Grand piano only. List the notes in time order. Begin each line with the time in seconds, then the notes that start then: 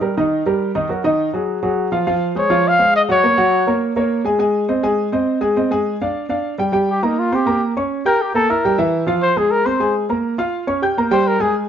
0.01 G3 G4 A#4
0.17 D#3 D#4 D#5
0.46 G3 G4 A#4
0.75 D#3 D#4 D#5
0.89 F#3 F#4 A#4
1.04 D#3 D#4 D#5
1.34 F#3 F#4 G#4
1.63 F#3 F#4 G#4
1.92 F3 F4 F5
2.07 F3 F4 F5
2.35 G#3 G#4 C5
2.50 F3 F4 F5
2.79 G#3 G#4 C5
3.09 F#3 F#4 F#5
3.23 A#3 A#4 C#5
3.38 F#3 F#4 F#5
3.67 A#3 A#4 C#5
3.96 A#3 A#4 C#5
4.25 G#3 G#4 G#5
4.39 G#3 G#4 G#5
4.68 C4 C5 D#5
4.83 G#3 G#4 G#5
5.12 C4 C5 D#5
5.41 G#3 G#4 G#5
5.56 C4 C5 D#5
5.71 G#3 G#4 G#5
6.01 D4 D5 F5
6.29 D4 D5 F5
6.58 G3 G4 G5
6.72 G3 G4 G5
7.03 A#3 A#4 A#5
7.32 C4 C5 C6
7.46 A#3 A#4 A#5
7.77 C#4 C#5 C#6
8.05 G4 G5 G6
8.34 A#3 A#4 A#5
8.50 E4 E5 E6
8.65 G3 G4 G5
8.78 E3 E4 E5
9.06 F3 F4 F5
9.37 G#3 G#4 G#5
9.65 C4 C5 C6
9.80 G#3 G#4 G#5
10.09 A#3 A#4 A#5
10.38 F4 F5 F6
10.67 C#4 C#5 C#6
10.82 G4 G5 G6
10.97 A#3 A#4 A#5
11.11 G3 G4 G5
11.40 G#3 G#4 G#5